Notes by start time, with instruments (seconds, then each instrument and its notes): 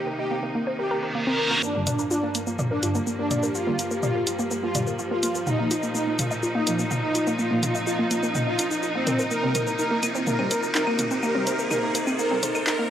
Already playing: string section C3 A#3 D#4, ambient pad D#4 C5 A#5
0.07 synth arpeggio sound A#4
0.19 synth arpeggio sound D#4, supersaw synth G4
0.31 synth arpeggio sound A#3
0.43 synth arpeggio sound A#3
0.55 synth arpeggio sound A#3
0.67 synth arpeggio sound C5, reverse cymbal
0.79 supersaw synth G4, synth arpeggio sound A#4
0.91 synth arpeggio sound A#4
1.03 synth arpeggio sound A#4
1.15 synth arpeggio sound A#3
1.27 synth arpeggio sound C4, supersaw synth A#4
1.39 synth arpeggio sound A#4
1.51 synth arpeggio sound A#3
1.63 string section G2 F3 A#3, synth arpeggio sound A#3, supersaw synth D4, ambient pad G4, riser, shaker
1.75 analog polysynth G2 D3 G3, synth arpeggio sound A#3
1.87 synth arpeggio sound D5, closed hi-hat, mid tom, shaker
1.99 synth arpeggio sound A#4, shaker
2.11 supersaw synth D4, synth arpeggio sound F4, shaker
2.23 synth arpeggio sound A#3
2.35 synth arpeggio sound A#3, closed hi-hat, shaker
2.40 ambient pad F5
2.47 synth arpeggio sound A#3, shaker
2.59 synth arpeggio sound D5, mid tom, shaker
2.71 supersaw synth D4, synth arpeggio sound A#4
2.83 analog polysynth G2 D3 G3, synth arpeggio sound F4, closed hi-hat, shaker
2.95 synth arpeggio sound A#3, shaker
3.07 synth arpeggio sound A#3, shaker
3.19 synth arpeggio sound A#3, supersaw synth D4
3.31 synth arpeggio sound D5, closed hi-hat, mid tom, shaker
3.43 synth arpeggio sound A#4, shaker
3.55 supersaw synth F4, synth arpeggio sound F4, shaker
3.67 analog polysynth G2 D3 G3, synth arpeggio sound A#3
3.79 synth arpeggio sound A#3, closed hi-hat, shaker
3.91 synth arpeggio sound A#3, shaker
4.03 supersaw synth F4, synth arpeggio sound D5, mid tom, shaker
4.15 synth arpeggio sound A#4
4.27 synth arpeggio sound F4, closed hi-hat, shaker
4.39 synth arpeggio sound A#3, shaker
4.51 synth arpeggio sound A#3, shaker
4.63 synth arpeggio sound A#3, supersaw synth F4
4.75 analog polysynth G2 D3 G3, synth arpeggio sound D5, closed hi-hat, mid tom, shaker
4.87 synth arpeggio sound A#4, shaker
4.99 synth arpeggio sound F4, shaker
5.11 synth arpeggio sound A#3, supersaw synth F4
5.23 synth arpeggio sound A#3, closed hi-hat, shaker
5.35 synth arpeggio sound A#3, shaker
5.47 string section A#2 D#4, supersaw synth D#4, ambient pad F4, synth arpeggio sound F5, mid tom, shaker
5.59 analog polysynth A#2 F3 A#3, ambient pad D#5, synth arpeggio sound D#5
5.71 synth arpeggio sound F4, closed hi-hat, shaker
5.83 synth arpeggio sound A#3, shaker
5.95 synth arpeggio sound A#3, supersaw synth D#4, shaker
6.07 synth arpeggio sound A#3
6.19 synth arpeggio sound F5, closed hi-hat, mid tom, shaker
6.31 synth arpeggio sound D#5, shaker
6.43 synth arpeggio sound F4, shaker
6.55 synth arpeggio sound A#3, supersaw synth D#4
6.67 analog polysynth A#2 F3 A#3, synth arpeggio sound A#3, closed hi-hat, shaker
6.79 synth arpeggio sound A#3, shaker
6.91 synth arpeggio sound F5, mid tom, shaker
7.03 supersaw synth D#4, synth arpeggio sound D#5
7.15 synth arpeggio sound F4, closed hi-hat, shaker
7.27 synth arpeggio sound A#3, shaker
7.39 synth arpeggio sound A#3, supersaw synth F4, shaker
7.51 analog polysynth A#2 F3 A#3, synth arpeggio sound A#3
7.63 synth arpeggio sound F5, closed hi-hat, mid tom, shaker
7.75 synth arpeggio sound D#5, shaker
7.87 supersaw synth F4, synth arpeggio sound F4, shaker
7.99 synth arpeggio sound A#3
8.11 synth arpeggio sound A#3, closed hi-hat, shaker
8.23 synth arpeggio sound A#3, shaker
8.35 synth arpeggio sound F5, mid tom, shaker
8.47 supersaw synth F4, synth arpeggio sound D#5
8.59 synth arpeggio sound D#4, closed hi-hat, shaker
8.71 synth arpeggio sound D#4, shaker
8.83 synth arpeggio sound F4, shaker
8.95 synth arpeggio sound A#3, supersaw synth C4
9.07 synth arpeggio sound A#4, closed hi-hat, mid tom, shaker
9.19 synth arpeggio sound A#4, shaker
9.31 string section C3 A#3, synth arpeggio sound A#3, ambient pad D#4, supersaw synth A#4, shaker
9.43 analog polysynth C3 G3 C4, synth arpeggio sound C4
9.55 synth arpeggio sound C5, closed hi-hat, mid tom, claves, shaker
9.67 synth arpeggio sound A#4, shaker
9.79 synth arpeggio sound D#4, supersaw synth A#4, shaker
9.87 synth arpeggio sound A#3, ambient pad C5
10.03 synth arpeggio sound A#3, closed hi-hat, claves, shaker
10.15 synth arpeggio sound C4, shaker
10.27 synth arpeggio sound A#3, supersaw synth A#4, mid tom, shaker
10.39 analog polysynth C3 G3 C4, synth arpeggio sound C4, claves
10.51 synth arpeggio sound C5, closed hi-hat, shaker
10.63 synth arpeggio sound A#4, shaker
10.75 synth arpeggio sound D#4, supersaw synth A#4, clap, shaker
10.87 synth arpeggio sound A#3, claves
10.99 synth arpeggio sound A#3, closed hi-hat, mid tom, shaker
11.11 synth arpeggio sound C4, shaker
11.23 synth arpeggio sound A#3, supersaw synth A#4, claves, shaker
11.35 analog polysynth C3 G3 C4, synth arpeggio sound C4
11.47 synth arpeggio sound C5, closed hi-hat, shaker
11.59 synth arpeggio sound A#4, shaker
11.71 synth arpeggio sound D#4, supersaw synth A#4, mid tom, claves, shaker
11.83 synth arpeggio sound A#3
11.95 synth arpeggio sound A#3, closed hi-hat, shaker
12.07 synth arpeggio sound C4, claves, shaker
12.19 synth arpeggio sound A#3, supersaw synth A#4, shaker
12.31 analog polysynth C3 G3 C4, synth arpeggio sound C4
12.43 synth arpeggio sound C5, closed hi-hat, mid tom, shaker
12.55 synth arpeggio sound A#4, claves, shaker
12.67 synth arpeggio sound D#4, supersaw synth A#4, clap, shaker
12.79 synth arpeggio sound A#3